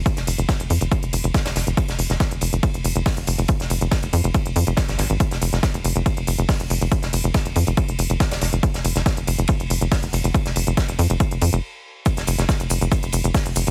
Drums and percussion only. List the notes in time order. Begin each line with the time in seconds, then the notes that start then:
0.06 kick, closed hi-hat, ride
0.17 snare, closed hi-hat
0.27 open hi-hat, ride
0.38 closed hi-hat
0.49 kick, snare, closed hi-hat, ride
0.60 closed hi-hat, ride
0.70 open hi-hat, ride
0.81 closed hi-hat, ride
0.92 kick, closed hi-hat, ride
1.03 closed hi-hat
1.13 open hi-hat, ride
1.24 closed hi-hat, ride
1.34 kick, snare, closed hi-hat, ride
1.45 snare, closed hi-hat, ride
1.56 snare, open hi-hat, ride
1.67 closed hi-hat
1.77 kick, closed hi-hat, ride
1.88 snare, closed hi-hat
1.99 open hi-hat, ride
2.10 snare, closed hi-hat
2.20 kick, snare, closed hi-hat, ride
2.31 closed hi-hat
2.41 open hi-hat, ride
2.53 closed hi-hat
2.63 kick, closed hi-hat, ride
2.74 closed hi-hat
2.84 open hi-hat, ride
2.96 closed hi-hat
3.06 kick, snare, closed hi-hat, open hi-hat
3.17 closed hi-hat
3.27 open hi-hat, ride
3.38 closed hi-hat, ride
3.48 kick, closed hi-hat, ride
3.60 snare, closed hi-hat
3.70 open hi-hat, ride
3.81 closed hi-hat
3.91 kick, snare, closed hi-hat, ride
4.03 closed hi-hat, ride
4.13 open hi-hat, ride
4.24 closed hi-hat, ride
4.34 kick, closed hi-hat, ride
4.46 closed hi-hat
4.56 open hi-hat, ride
4.67 closed hi-hat, ride
4.77 kick, snare, closed hi-hat, ride
4.88 snare, closed hi-hat
4.98 snare, open hi-hat, ride
5.10 closed hi-hat
5.20 kick, closed hi-hat, ride
5.31 snare, closed hi-hat
5.42 open hi-hat, ride
5.53 snare, closed hi-hat
5.63 kick, snare, closed hi-hat, ride
5.74 closed hi-hat
5.84 open hi-hat, ride
5.96 closed hi-hat
6.06 kick, closed hi-hat, ride
6.17 closed hi-hat
6.27 open hi-hat, ride
6.38 closed hi-hat
6.49 kick, snare, closed hi-hat, open hi-hat
6.60 closed hi-hat
6.70 open hi-hat, ride
6.81 closed hi-hat, ride
6.92 kick, closed hi-hat, ride
7.02 snare, closed hi-hat
7.13 open hi-hat, ride
7.24 closed hi-hat
7.34 kick, snare, closed hi-hat, ride
7.45 closed hi-hat, ride
7.55 open hi-hat, ride
7.67 closed hi-hat, ride
7.77 kick, closed hi-hat, ride
7.88 closed hi-hat
7.99 open hi-hat, ride
8.10 closed hi-hat, ride
8.20 kick, snare, closed hi-hat, ride
8.31 snare, closed hi-hat, ride
8.41 snare, open hi-hat, ride
8.53 closed hi-hat
8.63 kick, closed hi-hat, ride
8.74 snare, closed hi-hat
8.85 open hi-hat, ride
8.96 snare, closed hi-hat
9.06 kick, snare, closed hi-hat, ride
9.17 closed hi-hat
9.27 open hi-hat, ride
9.39 closed hi-hat
9.47 kick, closed hi-hat, ride
9.60 closed hi-hat
9.70 open hi-hat, ride
9.81 closed hi-hat
9.92 kick, snare, closed hi-hat, open hi-hat
10.03 closed hi-hat
10.13 open hi-hat, ride
10.24 closed hi-hat, ride
10.34 kick, closed hi-hat, ride
10.46 snare, closed hi-hat
10.56 open hi-hat, ride
10.67 closed hi-hat
10.77 kick, snare, closed hi-hat, ride
10.88 closed hi-hat, ride
10.99 open hi-hat, ride
11.10 closed hi-hat, ride
11.20 kick, closed hi-hat, ride
11.31 closed hi-hat
11.41 open hi-hat, ride
11.53 closed hi-hat, ride
12.06 kick, closed hi-hat, ride, shaker
12.17 snare, closed hi-hat, shaker
12.27 open hi-hat, ride, shaker
12.38 snare, closed hi-hat, shaker
12.49 kick, snare, closed hi-hat, ride, shaker
12.60 closed hi-hat, shaker
12.70 open hi-hat, ride, shaker
12.81 closed hi-hat, shaker
12.92 kick, closed hi-hat, ride, shaker
13.03 closed hi-hat, shaker
13.12 open hi-hat, ride, shaker
13.24 closed hi-hat, shaker
13.34 kick, snare, closed hi-hat, open hi-hat, shaker
13.46 closed hi-hat, shaker
13.56 open hi-hat, ride, shaker
13.67 closed hi-hat, ride, shaker